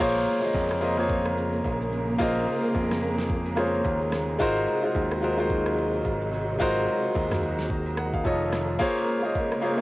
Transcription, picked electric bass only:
0.00 A#1
0.54 F2
1.65 A#1
2.20 A#1
2.75 F2
3.85 D#2
4.40 G#1
4.95 D#2
6.05 G#1
6.60 G#1
7.15 D#2
8.25 F1

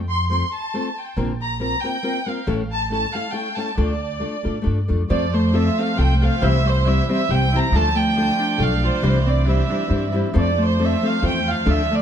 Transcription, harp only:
5.10 F3
5.34 A3
5.54 F3
5.79 C4
6.21 F4
6.42 E3
6.65 G3
6.85 E3
7.09 C4
7.53 E4
7.72 F3
7.95 A3
8.16 F3
8.39 D4
8.83 F4
9.02 E3
9.26 C4
9.45 E3
9.69 D4
10.12 E4
10.33 F3
10.58 A3
10.79 F3
11.03 C4
11.47 F4
11.67 F3
11.91 A3

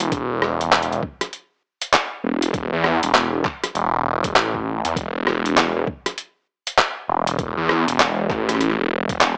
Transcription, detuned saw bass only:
0.12 E1
0.42 E1
0.91 E1
2.24 E1
2.73 E2
3.03 E1
3.75 E1
4.35 A1
4.85 E2
4.96 E1
5.27 E1
5.75 E1
7.08 E1
7.57 E2
7.87 E1
8.30 A1
8.79 E1
9.09 E1
9.20 E1

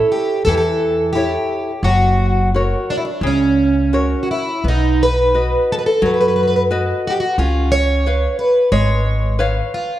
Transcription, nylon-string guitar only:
Already playing: E4 A4 C#5
0.48 E3
1.15 E4 A4 C#5
1.85 F#3
2.54 F#4 A#4 C#5
3.23 C#3
3.93 F#4 A#4 C#5
4.64 B3
5.34 F#4 B4 D#5
6.02 F#3
6.71 F#4 B4 D#5
7.39 C#4
8.06 B4 C#5 F5
8.72 G#3
9.39 B4 C#5 F5

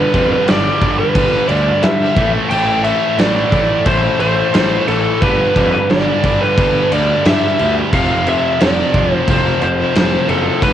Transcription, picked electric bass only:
0.14 F2
0.49 G1
0.82 G1
1.16 G1
1.50 D2
1.83 G2
2.16 A1
2.51 A1
3.19 A1
3.52 A1
3.86 A1
4.20 A1
4.55 A1
4.89 A1
5.22 G1
5.56 F2
5.90 G1
6.24 G1
6.57 G1
6.92 D2
7.26 G2
7.60 D2
7.93 F1
8.61 F1
8.94 F1
9.28 F1
9.62 F1
9.95 F1
10.29 F#1
10.62 G1

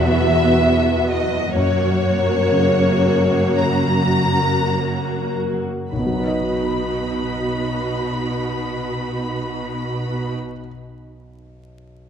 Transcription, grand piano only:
Already playing: E2 B2
1.56 F#2
2.52 C#3
5.92 B1
5.99 B2
6.06 F#3
6.13 D#4
6.20 B4
6.28 D#5

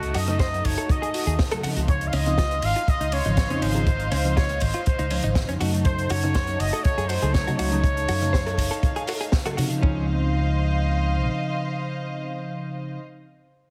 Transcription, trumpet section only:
Already playing: F#4
0.16 D#5
0.40 D#5
0.66 C#5
0.90 D#5
1.89 C#5
2.07 F5
2.14 D#5
2.64 F5
2.89 D#5
3.14 C#5
3.63 C5
4.13 C5
4.37 C#5
4.61 C5
4.87 C5
5.85 C5
6.09 C#5
6.59 D#5
6.84 C#5
7.08 C5
7.33 C#5
7.58 C#5

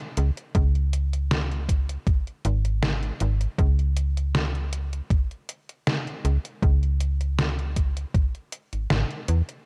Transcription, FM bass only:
0.18 C#2
0.55 C#2
2.45 G#1
3.21 G#1
3.59 C#2
6.25 C#2
6.63 C#2
8.73 G#1
8.91 G#1
9.29 E2

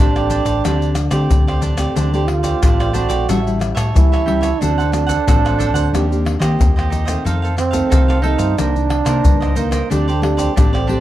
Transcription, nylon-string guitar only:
0.00 A2 A3 C4 G4
0.64 D3 A3 C4 G4
1.11 A3 C4 G4
1.30 A2
1.78 A3 C4 G4
1.96 D3
2.13 A3 C4 G4
2.63 A2 A3 C4 G4
2.95 A3 C4
3.28 A2 G3 C#4 E4
3.46 G3 C#4 E4
3.94 E3 G3 C#4 E4
4.26 G3 C#4 E4
4.61 D3 A3 C4 F#4
4.92 A3 C4 F#4
5.27 A2 A3 C4 F#4
5.94 D#3 A#3 C4 G4
6.11 A#3 C4 G4
6.40 A#3 C4 G4
6.59 A#2
7.07 D#3 A3 C4
7.26 F2
7.73 D#3 A3 C4
7.92 C3
8.24 D#3 A3 C4
8.57 C3 D#3 A#3 D4
9.04 D#3 A#3 D4
9.24 G2
9.56 D#3 A#3 D4
9.90 D3 A3 C4 G4
10.22 A3 C4 G4
10.57 A2 A3 C4 G4
10.89 A3 C4 G4

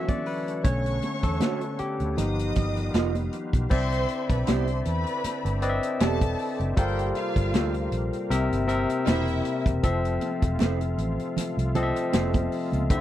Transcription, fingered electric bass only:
0.65 B1
1.23 E2
1.80 muted fingered electric bass stroke
2.00 D2
2.18 G1
2.56 G1
2.94 F1
3.54 B1
3.71 C2
4.29 B1
4.48 C2
4.86 E2
5.24 muted fingered electric bass stroke
5.45 G1
6.01 E1
6.60 F#1
6.77 G1
7.36 G1
7.54 D2
7.92 A#1
8.30 C2
8.51 G1
9.07 E1
9.66 E1
9.84 F1
10.43 E1
10.61 F1
10.98 A1
11.37 muted fingered electric bass stroke
11.57 C2
12.14 F1
12.73 C#2
12.90 D2

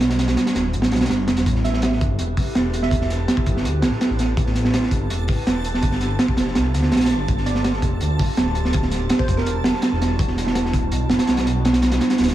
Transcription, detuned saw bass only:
Already playing: B1
0.55 D1
0.74 A1
0.92 B1
1.10 G1
1.28 E1
1.46 A1
2.01 G1
2.19 E1
2.37 A1
2.55 E1
3.47 G1
3.65 D2
3.83 A1
4.10 A1
4.37 A1
4.91 G1
5.10 E1
5.29 A1
5.46 E1
5.83 G1
6.37 F1
6.56 C2
6.74 D2
6.92 A#1
7.10 G1
7.29 G1
7.82 F1
8.01 D2
8.19 G1
8.37 D1
9.28 F1
9.46 E1
9.64 E1
9.92 E1
10.19 E1
10.74 D1
10.92 B1
11.10 E1
11.28 B1
12.19 D1

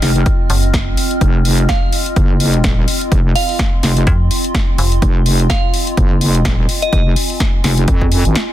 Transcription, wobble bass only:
0.02 F1
1.21 F1
2.16 F#1
2.64 D#1
3.12 F1
3.83 F1
5.02 F1
5.97 F#1
6.45 D#1
6.93 F1
7.64 F1
7.88 F2
8.25 G#1

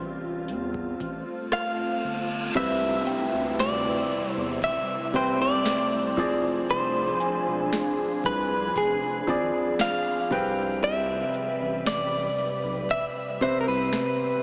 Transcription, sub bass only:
Already playing: A1
0.49 E2
1.01 A1
2.04 G1
2.56 C2
3.33 D2
4.11 E2
4.37 E2
5.14 C2
5.40 C2
6.18 F1
6.69 F1
7.47 E1
8.24 C2
8.76 F1
9.28 G#1
10.31 C2
11.61 A1
12.38 B1
12.64 B1
13.41 C2
13.68 C2

